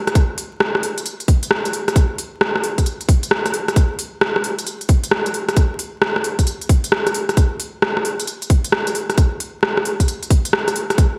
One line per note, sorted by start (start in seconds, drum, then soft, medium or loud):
0.07 cross-stick medium
0.07 closed hi-hat soft
0.15 kick loud
0.15 closed hi-hat medium
0.38 open hi-hat loud
0.60 cross-stick loud
0.75 cross-stick medium
0.83 open hi-hat loud
0.98 closed hi-hat medium
1.06 closed hi-hat medium
1.20 closed hi-hat soft
1.28 kick loud
1.28 open hi-hat loud
1.43 closed hi-hat medium
1.51 cross-stick loud
1.65 closed hi-hat medium
1.73 open hi-hat loud
1.88 cross-stick medium
1.88 closed hi-hat soft
1.96 kick loud
1.96 closed hi-hat medium
2.18 open hi-hat loud
2.41 cross-stick loud
2.56 cross-stick medium
2.64 open hi-hat medium
2.78 kick medium
2.78 closed hi-hat medium
2.86 closed hi-hat medium
3.01 closed hi-hat soft
3.09 kick loud
3.09 open hi-hat loud
3.23 closed hi-hat medium
3.31 cross-stick loud
3.46 cross-stick medium
3.46 closed hi-hat medium
3.54 open hi-hat loud
3.68 cross-stick medium
3.68 closed hi-hat soft
3.76 kick loud
3.76 closed hi-hat medium
3.99 open hi-hat loud
4.21 cross-stick loud
4.36 cross-stick medium
4.44 open hi-hat medium
4.59 closed hi-hat medium
4.67 closed hi-hat medium
4.81 closed hi-hat soft
4.89 kick loud
4.89 open hi-hat loud
5.04 closed hi-hat medium
5.11 cross-stick loud
5.26 closed hi-hat medium
5.34 open hi-hat medium
5.49 cross-stick medium
5.49 closed hi-hat soft
5.57 kick loud
5.57 closed hi-hat medium
5.79 open hi-hat loud
6.02 cross-stick loud
6.16 cross-stick medium
6.24 open hi-hat medium
6.39 kick medium
6.39 closed hi-hat medium
6.47 closed hi-hat medium
6.61 closed hi-hat soft
6.69 kick loud
6.69 open hi-hat loud
6.84 closed hi-hat medium
6.92 cross-stick loud
7.07 cross-stick medium
7.07 closed hi-hat medium
7.14 open hi-hat medium
7.29 cross-stick medium
7.29 closed hi-hat soft
7.37 kick loud
7.37 closed hi-hat medium
7.60 open hi-hat loud
7.82 cross-stick loud
7.97 cross-stick medium
8.05 open hi-hat medium
8.20 closed hi-hat medium
8.27 closed hi-hat medium
8.42 closed hi-hat soft
8.50 kick loud
8.50 open hi-hat loud
8.64 closed hi-hat medium
8.72 cross-stick loud
8.87 closed hi-hat medium
8.95 open hi-hat loud
9.10 cross-stick medium
9.10 closed hi-hat soft
9.18 kick loud
9.18 closed hi-hat medium
9.40 open hi-hat loud
9.63 cross-stick loud
9.77 cross-stick medium
9.85 open hi-hat medium
10.00 kick medium
10.00 closed hi-hat medium
10.08 closed hi-hat medium
10.23 closed hi-hat soft
10.30 kick loud
10.30 open hi-hat loud
10.45 closed hi-hat medium
10.53 cross-stick loud
10.68 cross-stick medium
10.68 closed hi-hat medium
10.76 open hi-hat loud
10.90 cross-stick medium
10.90 closed hi-hat soft
10.98 kick loud
10.98 closed hi-hat medium